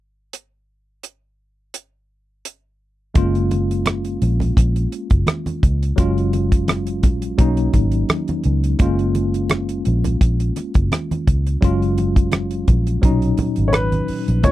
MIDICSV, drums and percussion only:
0, 0, Header, 1, 2, 480
1, 0, Start_track
1, 0, Key_signature, 6, "major"
1, 0, Tempo, 705053
1, 227, Time_signature, 4, 2, 24, 8
1, 9885, End_track
2, 0, Start_track
2, 0, Title_t, "Drums"
2, 227, Note_on_c, 9, 42, 56
2, 295, Note_off_c, 9, 42, 0
2, 704, Note_on_c, 9, 42, 50
2, 772, Note_off_c, 9, 42, 0
2, 1185, Note_on_c, 9, 42, 55
2, 1253, Note_off_c, 9, 42, 0
2, 1669, Note_on_c, 9, 42, 52
2, 1737, Note_off_c, 9, 42, 0
2, 2146, Note_on_c, 9, 42, 78
2, 2148, Note_on_c, 9, 36, 109
2, 2150, Note_on_c, 9, 62, 43
2, 2214, Note_off_c, 9, 42, 0
2, 2217, Note_off_c, 9, 36, 0
2, 2218, Note_off_c, 9, 62, 0
2, 2282, Note_on_c, 9, 42, 44
2, 2350, Note_off_c, 9, 42, 0
2, 2390, Note_on_c, 9, 42, 71
2, 2392, Note_on_c, 9, 62, 39
2, 2458, Note_off_c, 9, 42, 0
2, 2460, Note_off_c, 9, 62, 0
2, 2526, Note_on_c, 9, 42, 54
2, 2594, Note_off_c, 9, 42, 0
2, 2626, Note_on_c, 9, 42, 78
2, 2626, Note_on_c, 9, 63, 60
2, 2636, Note_on_c, 9, 37, 104
2, 2694, Note_off_c, 9, 42, 0
2, 2694, Note_off_c, 9, 63, 0
2, 2704, Note_off_c, 9, 37, 0
2, 2754, Note_on_c, 9, 42, 55
2, 2822, Note_off_c, 9, 42, 0
2, 2871, Note_on_c, 9, 42, 67
2, 2939, Note_off_c, 9, 42, 0
2, 2996, Note_on_c, 9, 64, 64
2, 3005, Note_on_c, 9, 42, 51
2, 3065, Note_off_c, 9, 64, 0
2, 3073, Note_off_c, 9, 42, 0
2, 3111, Note_on_c, 9, 36, 90
2, 3115, Note_on_c, 9, 42, 85
2, 3179, Note_off_c, 9, 36, 0
2, 3183, Note_off_c, 9, 42, 0
2, 3240, Note_on_c, 9, 42, 50
2, 3308, Note_off_c, 9, 42, 0
2, 3352, Note_on_c, 9, 42, 66
2, 3420, Note_off_c, 9, 42, 0
2, 3472, Note_on_c, 9, 42, 50
2, 3477, Note_on_c, 9, 36, 81
2, 3540, Note_off_c, 9, 42, 0
2, 3546, Note_off_c, 9, 36, 0
2, 3586, Note_on_c, 9, 63, 66
2, 3588, Note_on_c, 9, 42, 74
2, 3595, Note_on_c, 9, 37, 103
2, 3654, Note_off_c, 9, 63, 0
2, 3656, Note_off_c, 9, 42, 0
2, 3663, Note_off_c, 9, 37, 0
2, 3717, Note_on_c, 9, 63, 63
2, 3722, Note_on_c, 9, 42, 51
2, 3785, Note_off_c, 9, 63, 0
2, 3790, Note_off_c, 9, 42, 0
2, 3833, Note_on_c, 9, 36, 81
2, 3834, Note_on_c, 9, 42, 58
2, 3901, Note_off_c, 9, 36, 0
2, 3902, Note_off_c, 9, 42, 0
2, 3967, Note_on_c, 9, 42, 51
2, 4035, Note_off_c, 9, 42, 0
2, 4070, Note_on_c, 9, 42, 86
2, 4070, Note_on_c, 9, 62, 42
2, 4071, Note_on_c, 9, 36, 103
2, 4138, Note_off_c, 9, 62, 0
2, 4139, Note_off_c, 9, 36, 0
2, 4139, Note_off_c, 9, 42, 0
2, 4206, Note_on_c, 9, 42, 44
2, 4274, Note_off_c, 9, 42, 0
2, 4310, Note_on_c, 9, 62, 41
2, 4312, Note_on_c, 9, 42, 66
2, 4379, Note_off_c, 9, 62, 0
2, 4380, Note_off_c, 9, 42, 0
2, 4438, Note_on_c, 9, 36, 84
2, 4440, Note_on_c, 9, 42, 57
2, 4506, Note_off_c, 9, 36, 0
2, 4508, Note_off_c, 9, 42, 0
2, 4547, Note_on_c, 9, 42, 82
2, 4549, Note_on_c, 9, 63, 61
2, 4557, Note_on_c, 9, 37, 103
2, 4615, Note_off_c, 9, 42, 0
2, 4618, Note_off_c, 9, 63, 0
2, 4625, Note_off_c, 9, 37, 0
2, 4675, Note_on_c, 9, 42, 56
2, 4743, Note_off_c, 9, 42, 0
2, 4786, Note_on_c, 9, 42, 69
2, 4789, Note_on_c, 9, 36, 87
2, 4793, Note_on_c, 9, 64, 65
2, 4854, Note_off_c, 9, 42, 0
2, 4857, Note_off_c, 9, 36, 0
2, 4861, Note_off_c, 9, 64, 0
2, 4915, Note_on_c, 9, 42, 54
2, 4983, Note_off_c, 9, 42, 0
2, 5028, Note_on_c, 9, 36, 97
2, 5028, Note_on_c, 9, 42, 85
2, 5096, Note_off_c, 9, 36, 0
2, 5096, Note_off_c, 9, 42, 0
2, 5154, Note_on_c, 9, 42, 51
2, 5222, Note_off_c, 9, 42, 0
2, 5265, Note_on_c, 9, 42, 64
2, 5267, Note_on_c, 9, 36, 80
2, 5272, Note_on_c, 9, 64, 69
2, 5333, Note_off_c, 9, 42, 0
2, 5335, Note_off_c, 9, 36, 0
2, 5340, Note_off_c, 9, 64, 0
2, 5389, Note_on_c, 9, 42, 47
2, 5457, Note_off_c, 9, 42, 0
2, 5507, Note_on_c, 9, 42, 77
2, 5512, Note_on_c, 9, 63, 64
2, 5514, Note_on_c, 9, 37, 109
2, 5575, Note_off_c, 9, 42, 0
2, 5580, Note_off_c, 9, 63, 0
2, 5582, Note_off_c, 9, 37, 0
2, 5635, Note_on_c, 9, 42, 50
2, 5644, Note_on_c, 9, 63, 63
2, 5704, Note_off_c, 9, 42, 0
2, 5712, Note_off_c, 9, 63, 0
2, 5743, Note_on_c, 9, 42, 59
2, 5811, Note_off_c, 9, 42, 0
2, 5880, Note_on_c, 9, 42, 54
2, 5948, Note_off_c, 9, 42, 0
2, 5984, Note_on_c, 9, 42, 80
2, 5989, Note_on_c, 9, 36, 111
2, 5990, Note_on_c, 9, 62, 45
2, 6052, Note_off_c, 9, 42, 0
2, 6057, Note_off_c, 9, 36, 0
2, 6059, Note_off_c, 9, 62, 0
2, 6120, Note_on_c, 9, 42, 42
2, 6188, Note_off_c, 9, 42, 0
2, 6228, Note_on_c, 9, 42, 67
2, 6228, Note_on_c, 9, 62, 42
2, 6296, Note_off_c, 9, 42, 0
2, 6296, Note_off_c, 9, 62, 0
2, 6360, Note_on_c, 9, 42, 55
2, 6428, Note_off_c, 9, 42, 0
2, 6464, Note_on_c, 9, 42, 86
2, 6465, Note_on_c, 9, 63, 59
2, 6474, Note_on_c, 9, 37, 101
2, 6532, Note_off_c, 9, 42, 0
2, 6533, Note_off_c, 9, 63, 0
2, 6542, Note_off_c, 9, 37, 0
2, 6596, Note_on_c, 9, 42, 58
2, 6664, Note_off_c, 9, 42, 0
2, 6708, Note_on_c, 9, 42, 64
2, 6776, Note_off_c, 9, 42, 0
2, 6838, Note_on_c, 9, 64, 67
2, 6841, Note_on_c, 9, 42, 54
2, 6906, Note_off_c, 9, 64, 0
2, 6909, Note_off_c, 9, 42, 0
2, 6951, Note_on_c, 9, 36, 95
2, 6952, Note_on_c, 9, 42, 84
2, 7019, Note_off_c, 9, 36, 0
2, 7020, Note_off_c, 9, 42, 0
2, 7080, Note_on_c, 9, 42, 54
2, 7148, Note_off_c, 9, 42, 0
2, 7190, Note_on_c, 9, 42, 69
2, 7194, Note_on_c, 9, 62, 35
2, 7199, Note_on_c, 9, 37, 32
2, 7258, Note_off_c, 9, 42, 0
2, 7262, Note_off_c, 9, 62, 0
2, 7267, Note_off_c, 9, 37, 0
2, 7314, Note_on_c, 9, 42, 48
2, 7321, Note_on_c, 9, 36, 83
2, 7382, Note_off_c, 9, 42, 0
2, 7389, Note_off_c, 9, 36, 0
2, 7432, Note_on_c, 9, 63, 71
2, 7433, Note_on_c, 9, 42, 77
2, 7440, Note_on_c, 9, 37, 96
2, 7501, Note_off_c, 9, 42, 0
2, 7501, Note_off_c, 9, 63, 0
2, 7508, Note_off_c, 9, 37, 0
2, 7565, Note_on_c, 9, 63, 62
2, 7568, Note_on_c, 9, 42, 49
2, 7633, Note_off_c, 9, 63, 0
2, 7636, Note_off_c, 9, 42, 0
2, 7676, Note_on_c, 9, 36, 77
2, 7676, Note_on_c, 9, 42, 62
2, 7744, Note_off_c, 9, 36, 0
2, 7744, Note_off_c, 9, 42, 0
2, 7806, Note_on_c, 9, 42, 50
2, 7874, Note_off_c, 9, 42, 0
2, 7914, Note_on_c, 9, 36, 100
2, 7914, Note_on_c, 9, 62, 45
2, 7915, Note_on_c, 9, 42, 82
2, 7982, Note_off_c, 9, 36, 0
2, 7982, Note_off_c, 9, 62, 0
2, 7983, Note_off_c, 9, 42, 0
2, 8050, Note_on_c, 9, 42, 44
2, 8118, Note_off_c, 9, 42, 0
2, 8153, Note_on_c, 9, 42, 66
2, 8158, Note_on_c, 9, 62, 41
2, 8222, Note_off_c, 9, 42, 0
2, 8226, Note_off_c, 9, 62, 0
2, 8280, Note_on_c, 9, 36, 88
2, 8282, Note_on_c, 9, 42, 55
2, 8348, Note_off_c, 9, 36, 0
2, 8350, Note_off_c, 9, 42, 0
2, 8385, Note_on_c, 9, 42, 85
2, 8390, Note_on_c, 9, 63, 58
2, 8395, Note_on_c, 9, 37, 105
2, 8453, Note_off_c, 9, 42, 0
2, 8458, Note_off_c, 9, 63, 0
2, 8463, Note_off_c, 9, 37, 0
2, 8515, Note_on_c, 9, 42, 54
2, 8583, Note_off_c, 9, 42, 0
2, 8630, Note_on_c, 9, 42, 66
2, 8632, Note_on_c, 9, 36, 84
2, 8635, Note_on_c, 9, 64, 63
2, 8698, Note_off_c, 9, 42, 0
2, 8700, Note_off_c, 9, 36, 0
2, 8703, Note_off_c, 9, 64, 0
2, 8760, Note_on_c, 9, 42, 55
2, 8828, Note_off_c, 9, 42, 0
2, 8870, Note_on_c, 9, 36, 93
2, 8871, Note_on_c, 9, 42, 79
2, 8938, Note_off_c, 9, 36, 0
2, 8939, Note_off_c, 9, 42, 0
2, 9000, Note_on_c, 9, 42, 52
2, 9069, Note_off_c, 9, 42, 0
2, 9106, Note_on_c, 9, 42, 66
2, 9114, Note_on_c, 9, 62, 31
2, 9114, Note_on_c, 9, 64, 75
2, 9174, Note_off_c, 9, 42, 0
2, 9182, Note_off_c, 9, 62, 0
2, 9182, Note_off_c, 9, 64, 0
2, 9230, Note_on_c, 9, 42, 49
2, 9299, Note_off_c, 9, 42, 0
2, 9345, Note_on_c, 9, 63, 68
2, 9347, Note_on_c, 9, 42, 77
2, 9354, Note_on_c, 9, 37, 108
2, 9413, Note_off_c, 9, 63, 0
2, 9415, Note_off_c, 9, 42, 0
2, 9422, Note_off_c, 9, 37, 0
2, 9478, Note_on_c, 9, 42, 53
2, 9478, Note_on_c, 9, 63, 62
2, 9546, Note_off_c, 9, 42, 0
2, 9546, Note_off_c, 9, 63, 0
2, 9587, Note_on_c, 9, 46, 57
2, 9655, Note_off_c, 9, 46, 0
2, 9721, Note_on_c, 9, 42, 51
2, 9789, Note_off_c, 9, 42, 0
2, 9827, Note_on_c, 9, 42, 79
2, 9827, Note_on_c, 9, 62, 43
2, 9830, Note_on_c, 9, 36, 107
2, 9885, Note_off_c, 9, 36, 0
2, 9885, Note_off_c, 9, 42, 0
2, 9885, Note_off_c, 9, 62, 0
2, 9885, End_track
0, 0, End_of_file